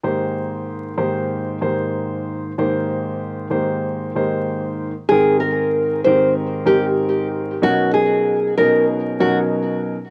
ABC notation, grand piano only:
X:1
M:4/4
L:1/8
Q:"Swing 16ths" 1/4=95
K:Ab
V:1 name="Grand piano"
[A,,E,B,Gc]3 [A,,E,B,Gc]2 [A,,E,B,Gc]3 | [A,,E,B,Gc]3 [A,,E,B,Gc]2 [A,,E,B,Gc]2 z | [A,,E,CBg]3 [A,,E,CGB]2 [A,,E,CGB]3 | [=B,,^F,^C^D^A]3 [B,,F,CDA]2 [B,,F,CDA]2 z |]